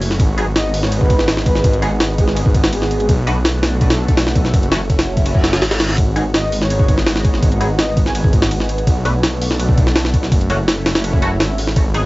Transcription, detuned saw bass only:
0.00 0.18 F#1 loud
0.20 1.63 G#1 loud
1.64 3.07 G#1 loud
3.09 4.52 B1 medium
4.53 5.61 F#1 loud
5.62 5.97 G#1 medium
5.98 7.41 G#1 loud
7.43 8.86 G#1 loud
8.87 10.30 B1 medium
10.32 11.40 F#1 medium
11.40 11.75 G#1 medium
11.76 12.06 G#1 loud

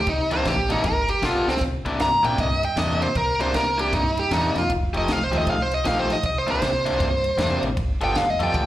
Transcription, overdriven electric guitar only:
0.31 0.54 C3 medium
0.31 0.53 E3 medium
0.31 0.53 A#3 medium
0.31 0.53 D4 medium
0.69 0.85 C3 medium
0.69 0.84 E3 medium
0.69 0.84 A#3 medium
0.69 0.84 D4 loud
1.22 1.51 G3 medium
1.22 1.51 B3 loud
1.22 1.52 F4 medium
1.22 1.52 A4 medium
1.85 2.08 C3 medium
1.85 2.07 A#3 medium
1.85 2.07 D4 medium
1.85 2.07 E4 medium
2.23 2.46 C3 medium
2.23 2.46 A#3 medium
2.23 2.46 D4 medium
2.23 2.45 E4 loud
2.76 3.05 C3 medium
2.76 3.06 A#3 loud
2.76 3.06 D4 loud
2.76 3.06 E4 medium
3.40 3.62 C3 medium
3.40 3.62 A#3 medium
3.40 3.62 D4 medium
3.40 3.61 E4 loud
3.78 4.00 C3 medium
3.78 4.00 A#3 medium
3.78 4.00 D4 loud
3.78 4.00 E4 loud
4.31 4.60 C3 loud
4.31 4.60 A#3 loud
4.31 4.60 D4 loud
4.31 4.60 E4 loud
4.93 5.16 F3 medium
4.93 5.16 A3 medium
4.93 5.15 D#4 medium
4.93 5.15 G4 loud
5.32 5.54 F3 medium
5.32 5.54 A3 medium
5.32 5.54 D#4 medium
5.32 5.54 G4 medium
5.84 6.13 F3 medium
5.84 6.13 A3 medium
5.84 6.14 D#4 loud
5.84 6.14 G4 medium
6.47 6.69 C3 medium
6.47 6.69 A#3 medium
6.47 6.69 D4 medium
6.47 6.69 E4 loud
6.86 7.08 C3 medium
6.86 7.08 A#3 medium
6.86 7.07 D4 medium
6.86 7.07 E4 loud
7.38 7.67 C3 medium
7.38 7.67 A#3 medium
7.38 7.67 D4 medium
7.38 7.67 E4 medium
8.01 8.23 G3 medium
8.01 8.23 B3 medium
8.01 8.23 F4 medium
8.01 8.23 A4 loud
8.40 8.62 G3 medium
8.40 8.62 B3 medium
8.40 8.62 F4 medium
8.40 8.61 A4 medium

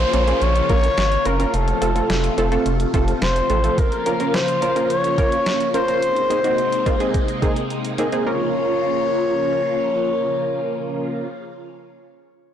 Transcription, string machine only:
0.00 1.51 C#3 medium
0.00 1.51 F3 medium
0.00 1.51 A#3 medium
0.00 3.74 F4 medium
1.54 3.76 C3 medium
1.54 5.98 F3 medium
1.54 3.76 A3 medium
3.78 6.00 C#3 medium
3.78 8.23 A#3 medium
3.78 6.00 F4 medium
6.03 8.24 C3 medium
6.03 8.24 G#3 medium
6.03 8.24 D#4 medium
8.26 11.27 C#3 medium
8.26 11.27 F3 medium
8.26 11.27 A#3 medium
8.26 11.27 F4 medium

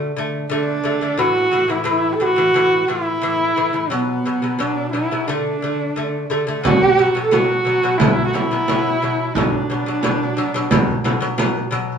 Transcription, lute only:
0.00 0.10 D3 medium
0.00 0.11 A3 medium
0.17 0.44 D3 medium
0.17 0.45 A3 medium
0.50 0.78 D3 medium
0.50 0.79 A3 medium
0.84 0.98 D3 medium
0.84 0.99 A3 medium
1.01 1.15 D3 medium
1.01 1.16 A3 medium
1.18 1.46 A2 medium
1.18 1.46 E3 medium
1.52 1.66 A2 medium
1.52 1.67 E3 medium
1.68 1.83 A2 medium
1.68 1.84 E3 medium
1.84 2.13 A2 medium
1.84 2.14 E3 medium
2.20 2.34 A2 medium
2.20 2.35 E3 medium
2.36 2.51 A2 medium
2.36 2.52 E3 medium
2.54 2.82 A2 medium
2.54 2.83 E3 medium
2.88 3.16 A2 medium
2.88 3.17 E3 medium
3.22 3.50 A2 medium
3.22 3.51 E3 medium
3.56 3.71 A2 medium
3.56 3.71 E3 medium
3.73 3.88 A2 medium
3.73 3.88 E3 medium
3.90 4.18 B2 medium
3.90 4.19 F#3 medium
4.26 4.39 B2 medium
4.26 4.40 F#3 medium
4.42 4.56 B2 medium
4.42 4.57 F#3 medium
4.59 4.87 B2 medium
4.59 4.87 F#3 medium
4.93 5.07 B2 medium
4.93 5.08 F#3 medium
5.11 5.25 B2 medium
5.11 5.25 F#3 medium
5.28 5.55 D3 medium
5.28 5.56 A3 medium
5.62 5.89 D3 medium
5.62 5.90 A3 medium
5.96 6.23 D3 medium
5.96 6.24 A3 medium
6.30 6.44 D3 medium
6.30 6.44 A3 medium
6.47 6.60 D3 medium
6.47 6.61 A3 medium
6.64 6.91 B2 medium
6.64 6.92 F#3 medium
6.98 7.11 B2 medium
6.98 7.12 F#3 medium
7.15 7.28 B2 medium
7.15 7.29 F#3 medium
7.31 7.59 B2 medium
7.31 7.59 F#3 medium
7.65 7.79 B2 medium
7.65 7.80 F#3 medium
7.83 7.97 B2 medium
7.83 7.97 F#3 medium
8.00 8.27 B2 medium
8.00 8.28 F#3 medium
8.34 8.47 B2 medium
8.34 8.48 F#3 medium
8.51 8.64 B2 medium
8.51 8.65 F#3 medium
8.68 8.95 B2 medium
8.68 8.96 F#3 medium
9.02 9.29 B2 medium
9.02 9.30 F#3 medium
9.36 9.63 B2 medium
9.36 9.64 F#3 medium
9.70 9.83 B2 medium
9.70 9.84 F#3 medium
9.86 10.00 B2 medium
9.86 10.01 F#3 medium
10.03 10.30 B2 medium
10.03 10.31 F#3 medium
10.37 10.50 B2 medium
10.37 10.51 F#3 medium
10.54 10.68 B2 medium
10.54 10.68 F#3 medium
10.71 10.98 B2 loud
10.71 10.99 F#3 loud
11.04 11.18 B2 medium
11.04 11.19 F#3 medium
11.20 11.35 B2 medium
11.20 11.35 F#3 medium
11.38 11.65 B2 loud
11.38 11.66 F#3 loud
11.71 11.98 B2 medium
11.71 11.98 F#3 medium

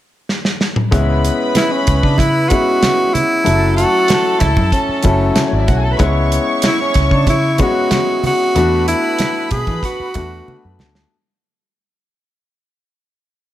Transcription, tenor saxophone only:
1.57 1.73 E4 medium
1.72 2.05 C#4 medium
2.03 2.20 D4 medium
2.18 2.50 E4 medium
2.49 3.15 F#4 loud
3.14 3.76 E4 medium
3.76 4.41 F#4 medium
4.40 4.72 E4 medium
4.73 5.65 C#4 medium
6.67 6.80 E4 medium
6.82 7.15 C#4 medium
7.14 7.29 D4 medium
7.30 7.63 E4 medium
7.61 8.24 F#4 medium
8.26 8.85 F#4 medium
8.88 9.48 E4 medium
9.52 9.81 G#4 medium
9.85 10.76 F#4 medium

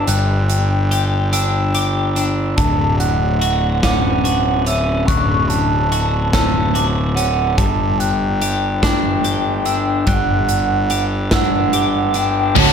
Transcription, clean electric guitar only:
0.00 1.32 D4 medium
0.00 0.90 G4 medium
0.08 2.17 G2 medium
0.91 1.73 G4 medium
1.33 2.16 D4 medium
1.75 2.58 G4 medium
2.16 3.83 D4 soft
2.58 4.67 D2 medium
3.41 4.24 F#4 medium
3.83 4.65 C#4 medium
4.25 5.91 F#4 medium
4.66 6.32 C#4 soft
5.08 7.17 D2 medium
5.92 6.74 F#4 medium
6.34 7.15 C#4 medium
6.75 7.61 F#4 medium
7.16 7.58 C#4 medium
7.58 9.66 G2 medium
8.42 9.24 G4 medium
8.83 9.65 D4 medium
9.25 10.90 G4 medium
9.66 11.31 D4 soft
10.08 12.15 G2 medium
10.91 11.72 G4 medium
11.32 12.14 D4 medium
11.73 12.56 G4 medium
12.16 12.57 D4 soft
12.57 12.73 D2 medium

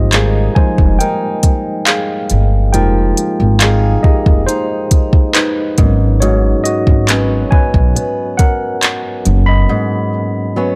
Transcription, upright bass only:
0.00 0.47 G#1 medium
0.56 muted upright bass stroke soft
0.79 0.97 F1 medium
2.31 2.74 G1 medium
2.74 3.11 F1 loud
3.40 3.95 G#1 medium
4.04 muted upright bass stroke soft
4.26 4.45 F1 medium
5.78 6.52 G#1 medium
6.87 7.43 G#1 medium
7.52 muted upright bass stroke soft
7.74 7.93 B1 medium
9.26 9.63 F#1 medium

